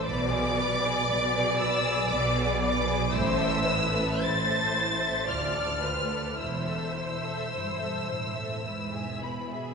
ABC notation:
X:1
M:3/4
L:1/16
Q:1/4=55
K:Am
V:1 name="Violin section"
d'6 e'2 d'2 d'2 | e'4 a'4 f'4 | e'8- e'2 b2 |]
V:2 name="Viola section"
d12 | c2 B2 c4 d2 B2 | c8- c2 z2 |]
V:3 name="Violin section"
[Bd] [^GB] [Bd] [GB] [Bd] [GB] [Bd] [GB] [Bd] [GB] [Bd] [GB] | [Ec] [Ae] [Ec] [Ae] [Ec] [Ae] [Ec] [Ae] [Fc] [Ad] [Fc] [Ad] | [Ec] [Ae] [Ec] [Ae] [Ec] [Ae] [Ec] [Ae] [EB] [^Ge] [EB] [Ge] |]
V:4 name="Cello section" clef=bass
B,,4 B,,4 B,,4 | A,,4 A,,4 D,,4 | E,,4 G,,2 A,,2 ^G,,2 B,,2 |]
V:5 name="Double bass section" clef=bass
B,,,4 B,,,4 B,,,4 | A,,,4 A,,,4 D,,4 | E,,,4 E,,,4 E,,,4 |]